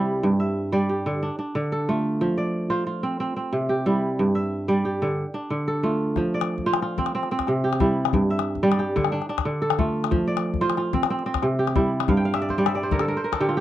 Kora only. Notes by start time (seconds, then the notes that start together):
Already playing: C3 G3 C4 E4 G4
0.23 G2
0.40 E5
0.72 G3 D5
0.89 G4
1.06 D3
1.23 D4
1.39 D4
1.55 D3
1.72 A4
1.89 A3 F4
2.21 F3
2.38 D5
2.70 F4 C5
2.87 F4
3.03 C4
3.20 C4
3.36 C4
3.53 C3
3.69 G4
3.86 G3 E4
4.19 G2
4.35 E5
4.68 G3 D5
4.85 G4
5.02 D3
5.34 D4
5.50 D3
5.68 A4
5.83 A3 F4
6.17 F3
6.34 D5
6.66 F4 C5
6.82 F4
6.98 C4
7.15 C4
7.32 C4
7.48 C3
7.64 G4
7.80 G3 E4
8.14 G2
8.30 E5
8.63 G3 D5
8.79 G4
8.96 D3
9.12 D4
9.29 D4
9.45 D3
9.62 A4
9.79 A3 F4
10.11 F3
10.27 D5
10.61 F4 C5
10.78 F4
10.94 C4
11.10 C4
11.26 C4
11.43 C3
11.59 G4
11.76 G3 E4
12.09 G2 F5
12.17 G5
12.25 F5
12.34 E5
12.42 D5
12.50 C5
12.58 G3 D5
12.66 E5
12.75 D5
12.83 C5
12.92 D3 A#4
13.00 A4
13.08 A#4
13.17 C5
13.24 A#4
13.32 A4
13.40 D3 G4
13.49 F4
13.57 G4